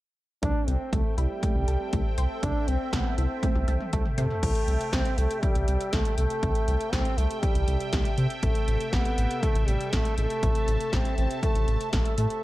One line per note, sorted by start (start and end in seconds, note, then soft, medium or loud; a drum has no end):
0.43 0.52 C2 loud
0.43 0.57 A3 medium
0.43 4.39 C4 medium
0.43 0.70 D4 loud
0.43 4.39 A4 medium
0.43 4.39 E5 medium
0.43 4.39 G5 medium
0.43 kick loud
0.43 closed hi-hat medium
0.68 0.77 C2 medium
0.68 0.82 C4 medium
0.68 0.95 C4 medium
0.68 closed hi-hat medium
0.93 1.02 C2 medium
0.93 1.07 A3 medium
0.93 1.18 A3 medium
0.93 kick loud
0.93 closed hi-hat medium
1.18 1.27 C2 medium
1.18 2.14 G3 medium
1.18 1.32 E4 medium
1.18 closed hi-hat medium
1.43 1.57 A3 medium
1.43 kick loud
1.43 closed hi-hat medium
1.55 1.64 C2 medium
1.68 1.77 C2 medium
1.68 1.82 A4 medium
1.68 closed hi-hat medium
1.93 2.02 C2 loud
1.93 2.07 A3 medium
1.93 kick loud
1.93 closed hi-hat medium
2.18 2.27 C2 medium
2.18 2.32 C5 medium
2.18 closed hi-hat medium
2.43 2.52 C2 loud
2.43 2.57 A3 medium
2.43 2.70 D4 loud
2.43 kick loud
2.43 closed hi-hat medium
2.68 2.77 C2 medium
2.68 2.82 C4 medium
2.68 2.94 C4 medium
2.68 closed hi-hat medium
2.93 3.02 C2 loud
2.93 3.07 A3 medium
2.93 3.17 B3 medium
2.93 kick loud
2.93 snare loud
2.93 closed hi-hat medium
3.18 3.27 C2 loud
3.18 3.89 C4 medium
3.18 3.32 E4 medium
3.18 closed hi-hat medium
3.43 3.57 A3 medium
3.43 kick loud
3.43 closed hi-hat medium
3.43 high tom medium
3.55 3.64 C2 loud
3.55 high tom medium
3.68 3.77 C2 medium
3.68 3.82 A4 medium
3.68 closed hi-hat medium
3.68 mid tom medium
3.80 mid tom medium
3.93 4.02 C2 loud
3.93 4.04 A3 medium
3.93 4.07 A3 medium
3.93 kick loud
3.93 closed hi-hat medium
3.93 mid tom medium
4.05 mid tom medium
4.18 4.27 C3 loud
4.18 4.94 A3 loud
4.18 4.32 C5 medium
4.18 closed hi-hat medium
4.18 floor tom medium
4.30 floor tom medium
4.43 4.52 C2 loud
4.43 12.44 C3 medium
4.43 12.44 A4 medium
4.43 12.44 E5 medium
4.43 10.39 G5 medium
4.43 kick loud
4.43 closed hi-hat medium
4.43 crash medium
4.55 closed hi-hat medium
4.68 4.77 C2 medium
4.68 closed hi-hat medium
4.81 closed hi-hat soft
4.93 5.02 C2 medium
4.93 5.19 C4 loud
4.93 kick loud
4.93 snare loud
4.93 closed hi-hat medium
5.05 closed hi-hat soft
5.18 5.27 C2 loud
5.18 5.45 A3 medium
5.18 closed hi-hat medium
5.31 closed hi-hat soft
5.43 5.95 G3 loud
5.43 kick loud
5.43 closed hi-hat medium
5.55 5.64 C2 medium
5.55 closed hi-hat soft
5.68 5.77 C2 medium
5.68 closed hi-hat medium
5.81 closed hi-hat soft
5.93 6.02 C2 loud
5.93 6.17 A3 medium
5.93 kick loud
5.93 snare loud
5.93 closed hi-hat medium
6.05 closed hi-hat medium
6.18 6.27 C2 medium
6.18 6.94 A3 medium
6.18 closed hi-hat medium
6.30 closed hi-hat soft
6.43 6.52 C2 loud
6.43 kick loud
6.43 closed hi-hat medium
6.55 closed hi-hat medium
6.68 6.77 C2 medium
6.68 closed hi-hat medium
6.81 closed hi-hat soft
6.93 7.02 C2 loud
6.93 7.19 C4 medium
6.93 kick loud
6.93 snare loud
6.93 closed hi-hat medium
7.05 closed hi-hat soft
7.18 7.27 C2 loud
7.18 7.44 A3 medium
7.18 closed hi-hat medium
7.31 closed hi-hat soft
7.43 8.18 G3 medium
7.43 kick loud
7.43 closed hi-hat medium
7.55 7.64 C2 medium
7.55 closed hi-hat medium
7.68 7.77 C2 loud
7.68 closed hi-hat medium
7.80 closed hi-hat soft
7.93 8.02 C2 loud
7.93 kick loud
7.93 snare loud
7.93 closed hi-hat medium
8.05 closed hi-hat medium
8.18 8.27 C3 loud
8.18 closed hi-hat medium
8.30 closed hi-hat soft
8.43 8.52 A1 loud
8.43 8.94 A3 medium
8.43 kick loud
8.43 closed hi-hat medium
8.55 closed hi-hat medium
8.68 8.77 A1 loud
8.68 closed hi-hat medium
8.80 closed hi-hat soft
8.93 9.02 A1 loud
8.93 9.44 B3 medium
8.93 kick loud
8.93 snare loud
8.93 closed hi-hat medium
9.05 closed hi-hat soft
9.18 9.27 A1 loud
9.18 closed hi-hat medium
9.31 closed hi-hat soft
9.43 9.70 A3 medium
9.43 kick loud
9.43 closed hi-hat medium
9.55 9.64 A1 medium
9.55 closed hi-hat medium
9.68 9.77 A1 medium
9.68 9.95 G3 medium
9.68 closed hi-hat medium
9.81 closed hi-hat soft
9.93 10.02 A1 loud
9.93 10.17 A3 medium
9.93 kick loud
9.93 snare loud
9.93 closed hi-hat medium
10.05 closed hi-hat medium
10.18 10.27 A1 loud
10.18 10.95 A3 loud
10.18 closed hi-hat medium
10.30 closed hi-hat soft
10.43 10.52 A1 loud
10.43 12.41 A5 medium
10.43 kick loud
10.43 closed hi-hat medium
10.55 closed hi-hat medium
10.68 10.77 A1 loud
10.68 closed hi-hat medium
10.81 closed hi-hat soft
10.93 11.02 A1 medium
10.93 11.17 C4 loud
10.93 kick loud
10.93 snare loud
10.93 closed hi-hat medium
11.05 closed hi-hat soft
11.18 11.27 A1 loud
11.18 11.41 C4 loud
11.18 closed hi-hat medium
11.31 closed hi-hat soft
11.43 11.90 A3 loud
11.43 kick loud
11.43 closed hi-hat medium
11.55 11.65 A1 medium
11.55 closed hi-hat medium
11.68 11.77 A1 loud
11.68 closed hi-hat medium
11.81 closed hi-hat soft
11.93 12.02 A1 loud
11.93 12.16 A3 medium
11.93 kick loud
11.93 snare loud
11.93 closed hi-hat medium
12.05 closed hi-hat medium
12.18 12.27 A2 loud
12.18 12.44 A3 medium
12.18 closed hi-hat medium
12.30 closed hi-hat soft